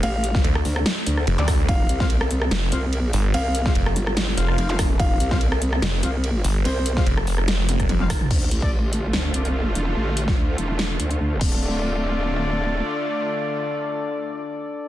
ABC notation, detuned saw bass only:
X:1
M:4/4
L:1/16
Q:"Swing 16ths" 1/4=145
K:Dm
V:1 name="Detuned saw bass" clef=bass
z4 D,,2 z6 F,,, D,,3 | z8 F,,,2 z4 G,,,2 | z4 F,,,2 z4 F,,,2 z4 | z8 F,,,2 z4 G,,,2 |
z4 F,,,2 F,,,8 z2 | z16 | z16 | z16 |
z16 |]